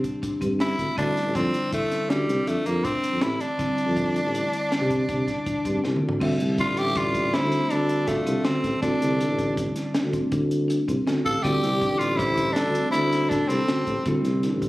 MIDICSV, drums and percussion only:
0, 0, Header, 1, 2, 480
1, 0, Start_track
1, 0, Key_signature, -1, "minor"
1, 0, Tempo, 373832
1, 1249, Time_signature, 7, 2, 24, 8
1, 18858, End_track
2, 0, Start_track
2, 0, Title_t, "Drums"
2, 52, Note_on_c, 9, 36, 58
2, 54, Note_on_c, 9, 42, 57
2, 181, Note_off_c, 9, 36, 0
2, 183, Note_off_c, 9, 42, 0
2, 293, Note_on_c, 9, 36, 86
2, 295, Note_on_c, 9, 42, 71
2, 422, Note_off_c, 9, 36, 0
2, 424, Note_off_c, 9, 42, 0
2, 533, Note_on_c, 9, 36, 69
2, 536, Note_on_c, 9, 42, 52
2, 662, Note_off_c, 9, 36, 0
2, 665, Note_off_c, 9, 42, 0
2, 772, Note_on_c, 9, 38, 86
2, 772, Note_on_c, 9, 42, 63
2, 901, Note_off_c, 9, 38, 0
2, 901, Note_off_c, 9, 42, 0
2, 1014, Note_on_c, 9, 36, 67
2, 1014, Note_on_c, 9, 38, 28
2, 1014, Note_on_c, 9, 42, 55
2, 1142, Note_off_c, 9, 36, 0
2, 1143, Note_off_c, 9, 38, 0
2, 1143, Note_off_c, 9, 42, 0
2, 1255, Note_on_c, 9, 36, 98
2, 1255, Note_on_c, 9, 42, 68
2, 1383, Note_off_c, 9, 36, 0
2, 1384, Note_off_c, 9, 42, 0
2, 1503, Note_on_c, 9, 38, 30
2, 1503, Note_on_c, 9, 42, 51
2, 1632, Note_off_c, 9, 38, 0
2, 1632, Note_off_c, 9, 42, 0
2, 1735, Note_on_c, 9, 36, 86
2, 1736, Note_on_c, 9, 42, 67
2, 1863, Note_off_c, 9, 36, 0
2, 1864, Note_off_c, 9, 42, 0
2, 1976, Note_on_c, 9, 42, 54
2, 2105, Note_off_c, 9, 42, 0
2, 2215, Note_on_c, 9, 42, 76
2, 2216, Note_on_c, 9, 36, 101
2, 2344, Note_off_c, 9, 42, 0
2, 2345, Note_off_c, 9, 36, 0
2, 2458, Note_on_c, 9, 38, 30
2, 2458, Note_on_c, 9, 42, 53
2, 2587, Note_off_c, 9, 38, 0
2, 2587, Note_off_c, 9, 42, 0
2, 2699, Note_on_c, 9, 38, 93
2, 2699, Note_on_c, 9, 42, 70
2, 2827, Note_off_c, 9, 38, 0
2, 2827, Note_off_c, 9, 42, 0
2, 2944, Note_on_c, 9, 38, 30
2, 2944, Note_on_c, 9, 42, 60
2, 3073, Note_off_c, 9, 38, 0
2, 3073, Note_off_c, 9, 42, 0
2, 3176, Note_on_c, 9, 42, 76
2, 3305, Note_off_c, 9, 42, 0
2, 3415, Note_on_c, 9, 42, 59
2, 3544, Note_off_c, 9, 42, 0
2, 3655, Note_on_c, 9, 36, 98
2, 3655, Note_on_c, 9, 42, 80
2, 3783, Note_off_c, 9, 36, 0
2, 3784, Note_off_c, 9, 42, 0
2, 3897, Note_on_c, 9, 42, 54
2, 4025, Note_off_c, 9, 42, 0
2, 4128, Note_on_c, 9, 38, 94
2, 4128, Note_on_c, 9, 42, 73
2, 4257, Note_off_c, 9, 38, 0
2, 4257, Note_off_c, 9, 42, 0
2, 4372, Note_on_c, 9, 42, 53
2, 4500, Note_off_c, 9, 42, 0
2, 4612, Note_on_c, 9, 36, 101
2, 4615, Note_on_c, 9, 42, 80
2, 4740, Note_off_c, 9, 36, 0
2, 4743, Note_off_c, 9, 42, 0
2, 4854, Note_on_c, 9, 42, 51
2, 4982, Note_off_c, 9, 42, 0
2, 5093, Note_on_c, 9, 36, 83
2, 5095, Note_on_c, 9, 42, 69
2, 5221, Note_off_c, 9, 36, 0
2, 5223, Note_off_c, 9, 42, 0
2, 5340, Note_on_c, 9, 42, 54
2, 5468, Note_off_c, 9, 42, 0
2, 5582, Note_on_c, 9, 42, 73
2, 5711, Note_off_c, 9, 42, 0
2, 5821, Note_on_c, 9, 42, 49
2, 5949, Note_off_c, 9, 42, 0
2, 6059, Note_on_c, 9, 38, 93
2, 6059, Note_on_c, 9, 42, 64
2, 6188, Note_off_c, 9, 38, 0
2, 6188, Note_off_c, 9, 42, 0
2, 6294, Note_on_c, 9, 36, 64
2, 6298, Note_on_c, 9, 42, 50
2, 6422, Note_off_c, 9, 36, 0
2, 6426, Note_off_c, 9, 42, 0
2, 6532, Note_on_c, 9, 42, 71
2, 6533, Note_on_c, 9, 36, 91
2, 6660, Note_off_c, 9, 42, 0
2, 6661, Note_off_c, 9, 36, 0
2, 6775, Note_on_c, 9, 36, 58
2, 6778, Note_on_c, 9, 38, 31
2, 6778, Note_on_c, 9, 42, 53
2, 6903, Note_off_c, 9, 36, 0
2, 6907, Note_off_c, 9, 38, 0
2, 6907, Note_off_c, 9, 42, 0
2, 7017, Note_on_c, 9, 36, 97
2, 7017, Note_on_c, 9, 42, 72
2, 7145, Note_off_c, 9, 36, 0
2, 7145, Note_off_c, 9, 42, 0
2, 7255, Note_on_c, 9, 36, 64
2, 7258, Note_on_c, 9, 42, 55
2, 7384, Note_off_c, 9, 36, 0
2, 7386, Note_off_c, 9, 42, 0
2, 7494, Note_on_c, 9, 38, 53
2, 7623, Note_off_c, 9, 38, 0
2, 7656, Note_on_c, 9, 47, 59
2, 7785, Note_off_c, 9, 47, 0
2, 7815, Note_on_c, 9, 43, 88
2, 7943, Note_off_c, 9, 43, 0
2, 7978, Note_on_c, 9, 36, 95
2, 7978, Note_on_c, 9, 49, 92
2, 8106, Note_off_c, 9, 36, 0
2, 8106, Note_off_c, 9, 49, 0
2, 8218, Note_on_c, 9, 42, 56
2, 8346, Note_off_c, 9, 42, 0
2, 8452, Note_on_c, 9, 38, 29
2, 8452, Note_on_c, 9, 42, 70
2, 8455, Note_on_c, 9, 36, 93
2, 8580, Note_off_c, 9, 38, 0
2, 8580, Note_off_c, 9, 42, 0
2, 8583, Note_off_c, 9, 36, 0
2, 8692, Note_on_c, 9, 42, 57
2, 8821, Note_off_c, 9, 42, 0
2, 8931, Note_on_c, 9, 42, 77
2, 8934, Note_on_c, 9, 36, 100
2, 9059, Note_off_c, 9, 42, 0
2, 9063, Note_off_c, 9, 36, 0
2, 9175, Note_on_c, 9, 36, 67
2, 9177, Note_on_c, 9, 42, 55
2, 9304, Note_off_c, 9, 36, 0
2, 9305, Note_off_c, 9, 42, 0
2, 9420, Note_on_c, 9, 38, 99
2, 9420, Note_on_c, 9, 42, 71
2, 9549, Note_off_c, 9, 38, 0
2, 9549, Note_off_c, 9, 42, 0
2, 9651, Note_on_c, 9, 38, 33
2, 9651, Note_on_c, 9, 42, 55
2, 9780, Note_off_c, 9, 38, 0
2, 9780, Note_off_c, 9, 42, 0
2, 9892, Note_on_c, 9, 42, 65
2, 10021, Note_off_c, 9, 42, 0
2, 10133, Note_on_c, 9, 42, 49
2, 10262, Note_off_c, 9, 42, 0
2, 10368, Note_on_c, 9, 38, 33
2, 10368, Note_on_c, 9, 42, 72
2, 10372, Note_on_c, 9, 36, 96
2, 10496, Note_off_c, 9, 38, 0
2, 10496, Note_off_c, 9, 42, 0
2, 10501, Note_off_c, 9, 36, 0
2, 10614, Note_on_c, 9, 42, 59
2, 10742, Note_off_c, 9, 42, 0
2, 10845, Note_on_c, 9, 38, 101
2, 10845, Note_on_c, 9, 42, 71
2, 10973, Note_off_c, 9, 38, 0
2, 10973, Note_off_c, 9, 42, 0
2, 11093, Note_on_c, 9, 36, 69
2, 11094, Note_on_c, 9, 38, 32
2, 11094, Note_on_c, 9, 42, 57
2, 11221, Note_off_c, 9, 36, 0
2, 11222, Note_off_c, 9, 38, 0
2, 11222, Note_off_c, 9, 42, 0
2, 11332, Note_on_c, 9, 36, 102
2, 11333, Note_on_c, 9, 42, 82
2, 11461, Note_off_c, 9, 36, 0
2, 11461, Note_off_c, 9, 42, 0
2, 11581, Note_on_c, 9, 42, 58
2, 11710, Note_off_c, 9, 42, 0
2, 11819, Note_on_c, 9, 42, 73
2, 11947, Note_off_c, 9, 42, 0
2, 12052, Note_on_c, 9, 36, 68
2, 12054, Note_on_c, 9, 42, 57
2, 12180, Note_off_c, 9, 36, 0
2, 12182, Note_off_c, 9, 42, 0
2, 12293, Note_on_c, 9, 36, 96
2, 12295, Note_on_c, 9, 42, 86
2, 12421, Note_off_c, 9, 36, 0
2, 12424, Note_off_c, 9, 42, 0
2, 12528, Note_on_c, 9, 38, 34
2, 12528, Note_on_c, 9, 42, 58
2, 12657, Note_off_c, 9, 38, 0
2, 12657, Note_off_c, 9, 42, 0
2, 12770, Note_on_c, 9, 38, 103
2, 12770, Note_on_c, 9, 42, 77
2, 12898, Note_off_c, 9, 38, 0
2, 12898, Note_off_c, 9, 42, 0
2, 13011, Note_on_c, 9, 36, 64
2, 13011, Note_on_c, 9, 42, 52
2, 13139, Note_off_c, 9, 36, 0
2, 13139, Note_off_c, 9, 42, 0
2, 13247, Note_on_c, 9, 42, 72
2, 13252, Note_on_c, 9, 36, 98
2, 13376, Note_off_c, 9, 42, 0
2, 13381, Note_off_c, 9, 36, 0
2, 13496, Note_on_c, 9, 42, 51
2, 13624, Note_off_c, 9, 42, 0
2, 13737, Note_on_c, 9, 42, 77
2, 13866, Note_off_c, 9, 42, 0
2, 13975, Note_on_c, 9, 36, 71
2, 13979, Note_on_c, 9, 42, 50
2, 14104, Note_off_c, 9, 36, 0
2, 14107, Note_off_c, 9, 42, 0
2, 14219, Note_on_c, 9, 38, 104
2, 14219, Note_on_c, 9, 42, 69
2, 14348, Note_off_c, 9, 38, 0
2, 14348, Note_off_c, 9, 42, 0
2, 14456, Note_on_c, 9, 36, 71
2, 14461, Note_on_c, 9, 42, 51
2, 14584, Note_off_c, 9, 36, 0
2, 14589, Note_off_c, 9, 42, 0
2, 14695, Note_on_c, 9, 36, 98
2, 14697, Note_on_c, 9, 42, 76
2, 14823, Note_off_c, 9, 36, 0
2, 14825, Note_off_c, 9, 42, 0
2, 14939, Note_on_c, 9, 38, 32
2, 14939, Note_on_c, 9, 42, 56
2, 15068, Note_off_c, 9, 38, 0
2, 15068, Note_off_c, 9, 42, 0
2, 15172, Note_on_c, 9, 36, 92
2, 15176, Note_on_c, 9, 42, 75
2, 15301, Note_off_c, 9, 36, 0
2, 15304, Note_off_c, 9, 42, 0
2, 15417, Note_on_c, 9, 38, 35
2, 15417, Note_on_c, 9, 42, 62
2, 15546, Note_off_c, 9, 38, 0
2, 15546, Note_off_c, 9, 42, 0
2, 15653, Note_on_c, 9, 36, 98
2, 15657, Note_on_c, 9, 42, 82
2, 15781, Note_off_c, 9, 36, 0
2, 15786, Note_off_c, 9, 42, 0
2, 15889, Note_on_c, 9, 42, 59
2, 15891, Note_on_c, 9, 36, 67
2, 16018, Note_off_c, 9, 42, 0
2, 16019, Note_off_c, 9, 36, 0
2, 16129, Note_on_c, 9, 38, 94
2, 16129, Note_on_c, 9, 42, 86
2, 16257, Note_off_c, 9, 38, 0
2, 16257, Note_off_c, 9, 42, 0
2, 16370, Note_on_c, 9, 42, 61
2, 16498, Note_off_c, 9, 42, 0
2, 16608, Note_on_c, 9, 42, 76
2, 16737, Note_off_c, 9, 42, 0
2, 16852, Note_on_c, 9, 38, 32
2, 16852, Note_on_c, 9, 42, 53
2, 16981, Note_off_c, 9, 38, 0
2, 16981, Note_off_c, 9, 42, 0
2, 17091, Note_on_c, 9, 36, 97
2, 17094, Note_on_c, 9, 38, 32
2, 17094, Note_on_c, 9, 42, 79
2, 17219, Note_off_c, 9, 36, 0
2, 17223, Note_off_c, 9, 38, 0
2, 17223, Note_off_c, 9, 42, 0
2, 17332, Note_on_c, 9, 42, 59
2, 17461, Note_off_c, 9, 42, 0
2, 17570, Note_on_c, 9, 38, 96
2, 17570, Note_on_c, 9, 42, 74
2, 17699, Note_off_c, 9, 38, 0
2, 17699, Note_off_c, 9, 42, 0
2, 17810, Note_on_c, 9, 36, 69
2, 17810, Note_on_c, 9, 42, 53
2, 17938, Note_off_c, 9, 36, 0
2, 17938, Note_off_c, 9, 42, 0
2, 18048, Note_on_c, 9, 42, 74
2, 18050, Note_on_c, 9, 36, 104
2, 18176, Note_off_c, 9, 42, 0
2, 18178, Note_off_c, 9, 36, 0
2, 18291, Note_on_c, 9, 38, 31
2, 18291, Note_on_c, 9, 42, 53
2, 18420, Note_off_c, 9, 38, 0
2, 18420, Note_off_c, 9, 42, 0
2, 18530, Note_on_c, 9, 38, 29
2, 18530, Note_on_c, 9, 42, 68
2, 18658, Note_off_c, 9, 38, 0
2, 18658, Note_off_c, 9, 42, 0
2, 18771, Note_on_c, 9, 36, 67
2, 18775, Note_on_c, 9, 42, 58
2, 18858, Note_off_c, 9, 36, 0
2, 18858, Note_off_c, 9, 42, 0
2, 18858, End_track
0, 0, End_of_file